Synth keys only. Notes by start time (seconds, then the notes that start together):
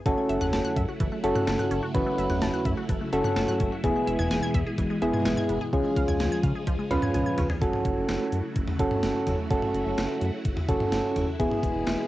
0.06 C#4 F#4 A4
1.24 C#4 F#4 A4
1.95 C#4 F#4 B4
3.13 C#4 F#4 A4
3.84 B3 E4 G#4
5.02 B3 E4 G#4
5.73 C#4 F4 G#4
6.91 C#4 F4 B4
7.62 C#4 F#4 A4
8.80 C#4 F#4 A4
9.51 C#4 F#4 A4
10.69 C#4 F#4 A4
11.40 B3 E4 G#4